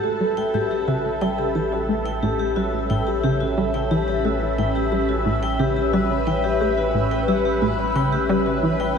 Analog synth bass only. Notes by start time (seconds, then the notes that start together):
Already playing: A2
0.20 G3
0.54 A2
0.88 C#3
1.21 G3
1.55 E3
1.89 A3
2.23 A2
2.56 G3
2.90 A2
3.24 C#3
3.57 G3
3.91 E3
4.25 A3
4.58 A2
4.92 G3
5.26 A2
5.59 C#3
5.93 G3
6.27 E3
6.61 A3
6.94 A2
7.28 G3
7.62 A2
7.95 C#3
8.29 G3
8.63 E3